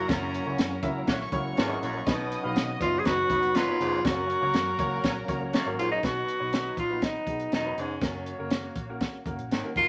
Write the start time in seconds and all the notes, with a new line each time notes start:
Already playing: F#3 A#3 F#4 A#4 A#5
0.09 F#1 F#2 C#4 E4 F#4 A#4 C#5, kick, snare, closed hi-hat
0.34 closed hi-hat
0.45 C#2 C#4 E4 F#4 A#4 C#5
0.58 F#2, snare, closed hi-hat
0.83 C#2 C#4 E4 F#4 A#4 E5, kick, closed hi-hat
1.07 A#1 A#3 F#4 C#5 C#6, kick, snare, closed hi-hat
1.21 snare
1.32 C#2 A#3 C#4 E4 F#4 A#4 C#5, kick, closed hi-hat
1.57 G#1 E2 A#3 F#4 C#5, snare, closed hi-hat
1.68 C#4 E4 F#4 A#4 D#5
1.82 A#1 F#2, closed hi-hat
2.06 B1 B2 F#3 B3 D#4 F#4 B4 D#5 D#6, kick, snare, closed hi-hat
2.32 closed hi-hat
2.43 B1 B3 D#4 F#4 B4 F5
2.56 B2, snare, closed hi-hat
2.80 F#1 B3 D#4 F4 F#4 B4 D5, kick, closed hi-hat
2.86 D#5
2.99 G#4
3.05 F#1 F#3 D#4 F#4 B4 B5, kick, snare, closed hi-hat
3.29 F1 F#3 B3 D#4 F#4 B4 D#5, kick, closed hi-hat
3.43 closed hi-hat
3.54 F#2 F#3 D#4 F4 B4, snare, closed hi-hat
3.68 B3 D#4 F#4 B4 C#5
3.80 F1 G#2, closed hi-hat
4.04 F#1 F#2 F#3 A#3 C#4 F#4 A#4 C#5 A#5, kick, snare, closed hi-hat
4.30 closed hi-hat
4.42 C#2 A#3 C#4 F#4 A#4 C#5
4.53 F#2, snare, closed hi-hat
4.79 C#2 A#3 C#4 F#4 A#4 C#5, kick, closed hi-hat
5.04 A#1 F#3 C#4 A#4, kick, snare, closed hi-hat
5.28 C#2 F#3 A#3 C#4 F#4 A#4 C#5, kick, closed hi-hat
5.53 F#2 A#3 F#4 C#5, snare, closed hi-hat
5.65 G#1 A#3 C#4 F#4 A#4 C#5
5.78 A#1 G#2 F4, closed hi-hat
5.91 D#4
6.02 B1 B2 F#3 B3 D#4 F#4 B4, kick, snare, closed hi-hat
6.28 closed hi-hat
6.39 B1 B3 D#4 F#4 C#5
6.53 snare, closed hi-hat
6.77 A#1 F4, kick, closed hi-hat
6.89 B3 D#4 F#4 B4
7.02 D#4, kick, snare, closed hi-hat
7.26 B1 B3 D#4 F#4 G#4, kick, closed hi-hat
7.40 closed hi-hat
7.52 E1 F#2 D#4, snare, closed hi-hat
7.65 B3 D#4 F#4 B4
7.77 F1 G#2 C#4, closed hi-hat
8.01 F#1 F#2 A#3 C#4 F#4 A#4 C#5, kick, snare, closed hi-hat
8.26 closed hi-hat
8.38 F#1 A#3 C#4 F#4 A#4
8.51 snare, closed hi-hat
8.75 A#1, kick, closed hi-hat
8.89 A#3 C#4 F#4 A#4
9.01 kick, snare, closed hi-hat
9.25 F#1 A#3 C#4 F#4 A#4, kick, closed hi-hat
9.38 A#1, closed hi-hat
9.50 G#1 D#2, snare, closed hi-hat
9.64 A#3 C#4 F#4 A#4
9.76 F#1 F#2 A#3 D#4 F4 F#4 A#4 D#5, kick, closed hi-hat